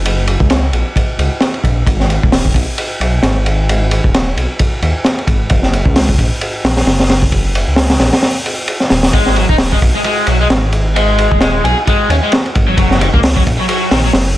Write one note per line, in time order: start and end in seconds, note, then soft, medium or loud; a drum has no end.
0.00 0.36 F#1 loud
0.05 ride medium
0.27 ride medium
0.40 0.70 C#2 medium
0.40 kick loud
0.50 snare loud
0.50 ride medium
0.73 0.83 A#1 medium
0.73 ride medium
0.96 kick medium
0.96 ride medium
1.18 1.29 C#2 medium
1.18 ride medium
1.41 snare loud
1.41 ride medium
1.54 ride soft
1.64 1.83 A#1 medium
1.64 kick loud
1.64 ride medium
1.86 2.18 G#1 loud
1.86 kick loud
1.86 ride medium
2.00 snare soft
2.10 ride medium
2.23 2.52 D#1 medium
2.23 kick loud
2.32 snare loud
2.32 open hi-hat medium
2.45 kick medium
2.54 2.65 B1 medium
2.54 kick medium
2.54 ride medium
2.78 ride medium
3.00 3.19 B1 medium
3.00 ride medium
3.23 4.00 G#1 loud
3.23 snare loud
3.23 ride medium
3.46 ride medium
3.69 ride medium
3.91 ride medium
4.04 4.34 D#1 medium
4.04 kick medium
4.14 snare loud
4.14 ride medium
4.36 4.47 B1 loud
4.36 ride medium
4.59 kick loud
4.59 ride medium
4.82 4.93 D#2 medium
4.82 ride medium
5.05 snare loud
5.05 ride medium
5.19 ride soft
5.27 5.47 G#1 medium
5.27 kick medium
5.27 ride medium
5.50 5.82 F#1 loud
5.50 kick loud
5.50 ride medium
5.63 snare soft
5.73 ride medium
5.85 6.15 C#2 medium
5.85 kick medium
5.96 snare loud
5.96 open hi-hat medium
6.09 kick loud
6.18 6.29 A#1 loud
6.18 kick medium
6.18 ride medium
6.41 ride medium
6.64 6.83 A#1 medium
6.64 snare loud
6.64 open hi-hat medium
6.77 snare loud
6.77 open hi-hat medium
6.86 7.64 F#1 loud
6.86 snare loud
6.86 open hi-hat medium
7.00 snare medium
7.00 open hi-hat medium
7.09 snare loud
7.09 open hi-hat medium
7.22 kick medium
7.32 kick medium
7.32 ride medium
7.55 ride medium
7.67 7.97 C#2 medium
7.76 snare loud
7.76 open hi-hat medium
7.90 snare loud
7.90 open hi-hat medium
8.00 8.11 A#1 loud
8.00 snare loud
8.00 open hi-hat medium
8.13 snare loud
8.13 open hi-hat medium
8.23 snare loud
8.23 open hi-hat medium
8.46 ride medium
8.68 ride medium
8.80 snare soft
8.90 9.10 D#1 loud
8.90 snare loud
8.90 open hi-hat medium
9.03 snare loud
9.03 open hi-hat medium
9.13 9.45 G#1 loud
9.13 9.36 G#3 medium
9.13 kick loud
9.13 ride medium
9.26 snare medium
9.36 9.45 F#3 medium
9.36 ride medium
9.49 9.79 D#1 medium
9.49 9.56 D#4 medium
9.49 kick medium
9.58 snare loud
9.58 open hi-hat medium
9.72 9.78 G#3 medium
9.72 kick medium
9.82 9.93 B1 loud
9.82 kick medium
9.82 ride medium
9.95 10.01 G#3 medium
10.04 10.27 G#3 loud
10.04 ride medium
10.27 10.47 B1 medium
10.27 10.36 F#3 medium
10.27 ride medium
10.41 10.47 G#3 loud
10.50 11.28 G#1 loud
10.50 snare loud
10.50 ride medium
10.72 ride medium
10.95 11.40 G#3 loud
10.95 ride medium
11.18 ride medium
11.31 11.61 D#1 medium
11.31 kick medium
11.41 11.63 G#3 medium
11.41 snare loud
11.41 ride medium
11.64 11.75 B1 loud
11.64 11.76 G#4 medium
11.64 ride medium
11.87 12.09 G#3 loud
11.87 kick loud
11.87 ride medium
12.09 12.20 D#2 medium
12.09 12.15 C#4 loud
12.09 ride medium
12.23 12.32 G#3 loud
12.32 snare loud
12.32 ride medium
12.46 ride soft
12.55 12.74 G#1 medium
12.55 kick loud
12.55 ride medium
12.68 12.77 F#3 loud
12.77 13.09 F#1 loud
12.77 13.00 F#3 medium
12.77 kick loud
12.77 ride medium
12.91 snare medium
13.00 13.09 D#3 medium
13.00 ride medium
13.14 13.43 C#2 medium
13.14 13.20 A#3 medium
13.14 kick medium
13.23 snare loud
13.23 open hi-hat medium
13.36 13.42 F#3 medium
13.36 kick medium
13.47 13.57 A#1 loud
13.47 kick loud
13.47 ride medium
13.59 13.65 F#3 medium
13.69 13.91 F#3 loud
13.69 ride medium
13.91 14.10 A#1 medium
13.91 14.00 D#3 medium
13.91 snare loud
13.91 open hi-hat medium
14.05 14.11 F#3 loud
14.13 14.38 F#1 loud
14.13 snare loud
14.13 open hi-hat medium